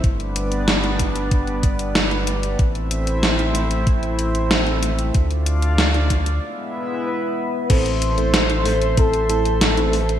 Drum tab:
CC |----------------|----------------|----------------|x---------------|
HH |xxxxxxxxxxxxxxxx|xxxxxxxxxxxxxxxx|xxxxxxxx--------|xxxxxxoxxxxxxxox|
SD |----o-------o---|----o-------o---|----o-----------|----o-------o---|
BD |o-----o-o-o-----|o-------o-------|o-----o---------|o-------o-------|